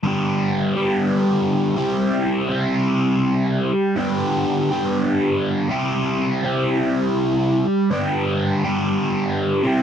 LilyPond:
\new Staff \with { instrumentName = "Overdriven electric guitar" } { \time 4/4 \key g \major \tempo 4 = 122 <g, d g b d' g'>4. <g, d g b d' g'>2 <c g c' e' g'>8~ | <c g c' e' g'>4 <c g c' e' g'>2~ <c g c' e' g'>8 r8 | <g, d g b d' g'>4. <g, d g b d' g'>2 <c g c' e' g'>8~ | <c g c' e' g'>4 <c g c' e' g'>2~ <c g c' e' g'>8 r8 |
<g, d g b d' g'>4. <g, d g b d' g'>2 <c g c' e' g'>8 | }